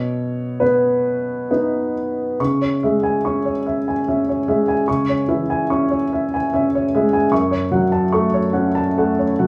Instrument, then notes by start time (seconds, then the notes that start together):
upright piano
Already playing: B2 C#5
0.60 B3 B4
1.51 B3 D#4
2.40 C#3 C#6
2.61 C#5
2.83 G#3 E5
3.03 G#5
3.25 C#4 C#6
3.45 C#5
3.66 E5
3.88 G#5
4.08 C#4 E5
4.29 C#5
4.48 G#3 E5
4.68 G#5
4.88 C#3 C#6
5.09 C#5
5.28 E3 E5
5.50 G#5
5.70 C#4 C#6
5.91 C#5
6.13 E5
6.34 G#5
6.53 C#4 E5
6.75 C#5
6.95 G#3 E5
7.13 G#5
7.31 F#2 C#6
7.51 C#5
7.71 F#3 F#5
7.92 A5
8.12 A3 C#6
8.34 C#5
8.53 C#4 F#5
8.75 A5
8.98 A3 F#5
9.19 C#5
9.39 F#3 F#5